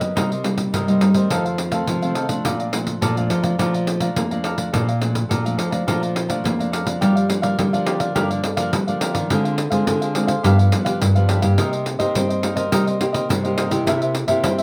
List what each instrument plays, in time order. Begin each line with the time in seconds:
Already playing: nylon-string guitar F#2 F#3 A#3 D#4
0.00 cavaquinho A#4 B4 D#5, pandeiro
0.15 nylon-string guitar C3 G3 A#3 D#4, cavaquinho D#4 A#4 C5 D#5, pandeiro
0.31 cavaquinho A#4 C5 D#5, pandeiro
0.43 nylon-string guitar G3 A#3 D#4, pandeiro
0.58 pandeiro
0.72 nylon-string guitar G2 C3, cavaquinho D#4 A#4 C5 D#5, pandeiro
0.88 nylon-string guitar G3 A#3 D#4, cavaquinho A#4 C5 D#5, pandeiro
1.01 nylon-string guitar G3, cavaquinho D#4 A#4 C5 D#5, pandeiro
1.14 nylon-string guitar D#3 A3 C4, cavaquinho A#4 C5 D#5, pandeiro
1.30 nylon-string guitar F2 F3, cavaquinho D#4 A4 C5 F5, pandeiro
1.45 cavaquinho A4 C5 F5, pandeiro
1.58 muted cavaquinho stroke, pandeiro
1.71 nylon-string guitar D#3 A3 C4, cavaquinho A4 C5 F5, pandeiro
1.87 nylon-string guitar C3 F3, pandeiro
2.02 nylon-string guitar D#3 A3 C4, cavaquinho A4 C5 F5, pandeiro
2.15 cavaquinho D#4 A4 C5 F5, pandeiro
2.29 nylon-string guitar F3 A3 D4, cavaquinho A4 C5 F5, pandeiro
2.44 nylon-string guitar A#2, cavaquinho A4 D5 F5 A#5, pandeiro
2.59 cavaquinho D5 F5 A#5, pandeiro
2.72 nylon-string guitar F3 A3 D4, muted cavaquinho stroke, pandeiro
2.87 pandeiro
3.01 nylon-string guitar F2 A#2, cavaquinho A4 D5 F5 A#5, pandeiro
3.17 nylon-string guitar F3 A3 D4, cavaquinho D5 F5 A#5, pandeiro
3.30 nylon-string guitar F3, cavaquinho A4 D5 F5 A#5, pandeiro
3.43 nylon-string guitar F3 A3 D4, cavaquinho D5 F5 A#5, pandeiro
3.59 nylon-string guitar A#2 F3 A3 D4, cavaquinho A4 D5 F5 A#5, pandeiro
3.73 cavaquinho D5 F5 A#5, pandeiro
3.87 muted cavaquinho stroke, pandeiro
4.00 nylon-string guitar F3 A3 D4, cavaquinho D5 F5 A#5, pandeiro
4.16 nylon-string guitar F2 A#3, pandeiro
4.31 nylon-string guitar F3 A3 D4, cavaquinho D5 F5 A#5, pandeiro
4.44 cavaquinho A4 D5 F5 A#5, pandeiro
4.57 nylon-string guitar F3 A3 D4, cavaquinho D5 F5 A#5, pandeiro
4.73 nylon-string guitar A#2 F3 A3 D4, cavaquinho A4 D5 F5 A#5, pandeiro
4.87 cavaquinho D5 F5 A#5, pandeiro
5.01 nylon-string guitar F3 A3 D4, muted cavaquinho stroke, pandeiro
5.15 pandeiro
5.29 nylon-string guitar F2 A#2, cavaquinho A4 D5 F5 A#5, pandeiro
5.44 nylon-string guitar F3 A3 D4, cavaquinho D5 F5 A#5, pandeiro
5.57 nylon-string guitar F3, cavaquinho A4 D5 F5 A#5, pandeiro
5.71 nylon-string guitar F3 A3 D4, cavaquinho D5 F5 A#5, pandeiro
5.87 nylon-string guitar A#2 F3 A3 D4, cavaquinho A4 D5 F5 A#5, pandeiro
6.02 cavaquinho D5 F5 A#5, pandeiro
6.15 muted cavaquinho stroke, pandeiro
6.29 nylon-string guitar F3 A3 D4, cavaquinho D5 F5 A#5, pandeiro
6.44 nylon-string guitar F2 A#3, pandeiro
6.59 nylon-string guitar F3 A3 D4, cavaquinho D5 F5 A#5, pandeiro
6.72 cavaquinho A4 D5 F5 A#5, pandeiro
6.86 nylon-string guitar F3 A#3 D4, cavaquinho D5 F5 A#5, pandeiro
7.01 nylon-string guitar G2 G3, cavaquinho G4 A#4 D5 F5, pandeiro
7.16 cavaquinho A#4 D5 F5, pandeiro
7.29 nylon-string guitar F3 A#3 D4, muted cavaquinho stroke, pandeiro
7.42 nylon-string guitar G3, cavaquinho A#4 D5 F5, pandeiro
7.59 nylon-string guitar D3 G3, pandeiro
7.73 nylon-string guitar F3 A#3 D4, cavaquinho A#4 D5 F5, pandeiro
7.86 cavaquinho G4 A#4 D5 F5, pandeiro
8.00 cavaquinho A#4 D5 F5, pandeiro
8.15 nylon-string guitar G2 D3 F3 A#3 D4, cavaquinho G4 A#4 D5 F5, pandeiro
8.30 cavaquinho A#4 D5 F5, pandeiro
8.44 pandeiro
8.57 nylon-string guitar F3 A#3 D4, cavaquinho A#4 D5 F5, pandeiro
8.73 nylon-string guitar D3 G3, muted cavaquinho stroke, pandeiro
8.87 nylon-string guitar F3 A#3 D4, cavaquinho A#4 D5 F5, pandeiro
9.00 nylon-string guitar F3 A#3 D4, cavaquinho G4 A#4 D5 F5, pandeiro
9.14 nylon-string guitar D#3, cavaquinho A#4 D5 F5, pandeiro
9.29 nylon-string guitar D3 G#3 C4 F4, cavaquinho D4 G#4 C5 F5, pandeiro
9.44 cavaquinho G#4 C5 F5, pandeiro
9.57 muted cavaquinho stroke, pandeiro
9.70 nylon-string guitar D3 G#3 C4 F4, cavaquinho G#4 C5 F5, pandeiro
9.87 nylon-string guitar D3, pandeiro
10.01 cavaquinho G#4 C5 F5, pandeiro
10.14 nylon-string guitar G#3 C4 F4, cavaquinho D4 G#4 C5 F5, pandeiro
10.27 cavaquinho G#4 C5 F5, pandeiro
10.43 nylon-string guitar G2 F3 B3 D4, cavaquinho D4 G4 B4 F5, pandeiro
10.58 cavaquinho B4 F5, pandeiro
10.72 nylon-string guitar F3 B3 D4, pandeiro
10.85 cavaquinho G4 B4 F5, pandeiro
11.01 nylon-string guitar G2 D3, muted cavaquinho stroke, pandeiro
11.15 nylon-string guitar F3 B3 D4, cavaquinho G4 B4 F5, pandeiro
11.28 cavaquinho D4 G4 B4 F5, pandeiro
11.42 nylon-string guitar G2 A#3 D#4 G4, cavaquinho G4 B4 F5, pandeiro
11.58 nylon-string guitar C3, cavaquinho D#4 A#4 C5 D#5, pandeiro
11.72 cavaquinho A#4 D#5, pandeiro
11.85 muted cavaquinho stroke, pandeiro
11.99 nylon-string guitar C3 A#3 D#4 G4, cavaquinho A#4 C5 D#5, pandeiro
12.15 nylon-string guitar G2 C4, pandeiro
12.29 cavaquinho A#4 C5 D#5, pandeiro
12.42 nylon-string guitar A#3 D#4 G4, cavaquinho D#4 A#4 C5 D#5, pandeiro
12.56 cavaquinho A#4 C5 D#5, pandeiro
12.72 nylon-string guitar C3 G3 A#3 D#4 G4, cavaquinho D#4 A#4 C5 D#5, pandeiro
12.86 cavaquinho A#4 C5 D#5, pandeiro
13.01 nylon-string guitar A#3 D#4 G4, pandeiro
13.13 cavaquinho A#4 C5 D#5, pandeiro
13.29 nylon-string guitar G2 C3, muted cavaquinho stroke, pandeiro
13.44 nylon-string guitar A#3 D#4 G4, cavaquinho A#4 C5 D#5, pandeiro
13.57 cavaquinho D#4 A#4 C5 D#5, pandeiro
13.70 nylon-string guitar C3 A#3 E4 G4, cavaquinho A#4 C5 D#5, pandeiro
13.86 nylon-string guitar C3, cavaquinho E4 A#4 C5 E5, pandeiro
14.01 cavaquinho A#4 C5 E5, pandeiro
14.14 muted cavaquinho stroke, pandeiro
14.27 nylon-string guitar C3 A#3 E4 G4, cavaquinho A#4 C5 E5, pandeiro
14.44 nylon-string guitar G2 C4, pandeiro
14.58 cavaquinho C5 E5, pandeiro